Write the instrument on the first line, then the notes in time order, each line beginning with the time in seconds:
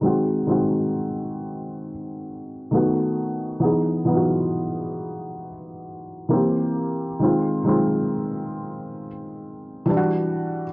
felt piano
0.01 D#3 G#3 C4
0.06 F#4
0.47 D#3 G#3 C4
0.51 F#4
2.71 D#3 A3 B3
2.76 F#4
3.60 E3 B3 D#4
3.64 G#4
4.05 E3 B3 D#4
4.10 F4
4.16 F#4
6.29 E3 A#3 C4
6.33 G4
7.19 D#3 G#3 C4
7.24 F4
7.64 D#3 G#3 C4
7.69 F4
9.86 E3 G3 D4
9.91 E4
9.97 F#4